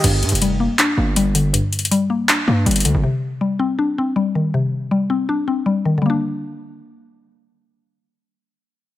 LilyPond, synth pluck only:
\new Staff \with { instrumentName = "Synth pluck" } { \clef bass \time 4/4 \key g \minor \tempo 4 = 160 g,4 g8 bes8 d'8 bes8 g8 d8 | g,4 g8 bes8 d'8 bes8 g8 d8 | c4 g8 c'8 d'8 c'8 g8 ees8 | c4 g8 c'8 d'8 c'8 g8 ees8 |
<d g bes d'>1~ | <d g bes d'>1 | }